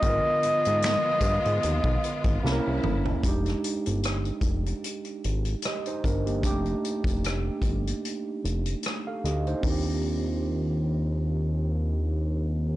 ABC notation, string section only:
X:1
M:4/4
L:1/8
Q:"Swing 16ths" 1/4=75
K:Fdor
V:1 name="String section"
[F,A,_CF]6 [=C,_D,B,=E]2 | z8 | z8 | z8 |]